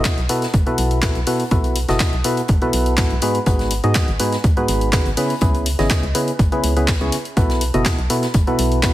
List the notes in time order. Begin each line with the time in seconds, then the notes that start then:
Already playing: B2 B3 E4 F#4 A4 D#5
0.04 kick, snare, clap, closed hi-hat
0.18 B1, closed hi-hat
0.29 B2 B3 E4 F#4 A4 B4, closed hi-hat, open hi-hat
0.42 snare, closed hi-hat
0.54 F#1, kick, closed hi-hat
0.67 B2 B3 E4 F#4 A4 B4, closed hi-hat
0.78 B1, closed hi-hat, open hi-hat
0.91 closed hi-hat
1.02 B2 B3 E4 F#4 A4 B4, kick, snare, clap, closed hi-hat
1.15 B1, closed hi-hat
1.27 B2 B3 E4 F#4 A4 B4, open hi-hat
1.40 closed hi-hat
1.51 B1 B2 B3 E4 F#4 A4 B4, kick, closed hi-hat
1.64 closed hi-hat
1.76 closed hi-hat, open hi-hat
1.89 F#1 B2 B3 E4 F#4 A4 D#5, snare, closed hi-hat
2.00 kick, snare, clap, closed hi-hat
2.13 B1, closed hi-hat
2.24 B2 B3 E4 F#4 A4 B4, closed hi-hat, open hi-hat
2.37 closed hi-hat
2.48 F#1, kick, closed hi-hat
2.62 B2 B3 E4 F#4 A4 B4, closed hi-hat
2.73 B1, closed hi-hat, open hi-hat
2.86 closed hi-hat
2.97 G#2 B3 E4 F#4 A4 B4, kick, snare, clap, closed hi-hat
3.10 B1, closed hi-hat
3.21 G#2 B3 D#4 F#4 G#4 B4, closed hi-hat, open hi-hat
3.35 closed hi-hat
3.46 G#1 G#2 B3 D#4 F#4 G#4 B4, kick, closed hi-hat
3.59 snare, closed hi-hat
3.71 closed hi-hat, open hi-hat
3.84 G#2 B3 D#4 F#4 G#4 D#5, closed hi-hat
3.95 kick, snare, clap, closed hi-hat
4.08 G#1, closed hi-hat
4.20 G#2 B3 D#4 F#4 G#4 B4, closed hi-hat, open hi-hat
4.32 snare, closed hi-hat
4.44 D#2, kick, closed hi-hat
4.57 G#2 B3 D#4 F#4 G#4 B4, closed hi-hat
4.68 G#1, closed hi-hat, open hi-hat
4.81 closed hi-hat
4.93 C#3 B3 D#4 F#4 G#4 B4, kick, snare, clap, closed hi-hat
5.06 G#1, closed hi-hat
5.17 C#3 B3 C#4 E4 G#4 B4, open hi-hat
5.30 closed hi-hat
5.41 C#2 C#3 B3 C#4 E4 G#4 B4, kick, closed hi-hat
5.55 closed hi-hat
5.66 closed hi-hat, open hi-hat
5.79 G#1 C#3 B3 C#4 E4 G#4 D#5, snare, closed hi-hat
5.90 kick, snare, clap, closed hi-hat
6.03 C#2, closed hi-hat
6.15 C#3 B3 C#4 E4 G#4 B4, closed hi-hat, open hi-hat
6.27 closed hi-hat
6.39 G#1, kick, closed hi-hat
6.52 C#3 B3 C#4 E4 G#4 B4, closed hi-hat
6.63 C#2, closed hi-hat, open hi-hat
6.77 C#3 B3 C#4 E4 G#4 B4, closed hi-hat
6.88 kick, snare, clap, closed hi-hat
7.01 C#2 C#3 B3 C#4 E4 G#4 C#5, closed hi-hat
7.12 closed hi-hat, open hi-hat
7.25 closed hi-hat
7.37 B1 B2 B3 E4 F#4 A4 B4, kick, closed hi-hat
7.50 snare, closed hi-hat
7.61 closed hi-hat, open hi-hat
7.74 F#1 B2 B3 E4 F#4 A4 D#5, closed hi-hat
7.85 kick, snare, clap, closed hi-hat
7.98 B1, closed hi-hat
8.10 B2 B3 E4 F#4 A4 B4, closed hi-hat, open hi-hat
8.22 snare, closed hi-hat
8.34 F#1, kick, closed hi-hat
8.47 B2 B3 E4 F#4 A4 B4, closed hi-hat
8.59 B1, closed hi-hat, open hi-hat
8.72 closed hi-hat
8.83 B2 B3 E4 F#4 A4 B4, kick, snare, clap, closed hi-hat